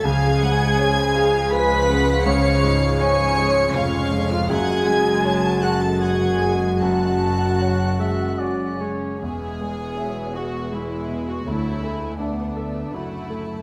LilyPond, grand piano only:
\new Staff \with { instrumentName = "Grand piano" } { \clef bass \time 3/4 \key fis \minor \tempo 4 = 81 cis,8 gis8 cis''8 gis'8 eis'8 gis8 | cis,8 gis,8 cis''8 gis'8 eis'8 gis8 | fis,8 gis8 cis''8 gis8 fis'8 gis8 | fis,8 cis8 cis''8 gis8 fis'8 gis8 |
e,8 gis8 e''8 gis'8 gis8 b,8 | d,8 a8 e''8 a'8 fis'8 a8 | }